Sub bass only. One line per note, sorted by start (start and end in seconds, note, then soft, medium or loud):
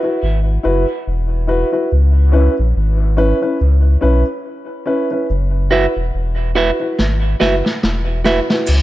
0.23 0.58 G#1 medium
0.65 0.86 F#1 medium
1.07 1.64 E1 medium
1.92 2.49 C#2 loud
2.59 2.74 A#1 medium
2.77 3.33 G#1 loud
3.61 3.97 C#2 medium
4.03 4.24 B1 medium
5.30 5.87 F#1 medium
5.97 6.11 E1 medium
6.15 6.72 E1 medium
6.99 7.35 G#1 medium
7.42 7.62 F#1 medium
7.84 8.41 E1 medium
8.69 8.82 C#2 loud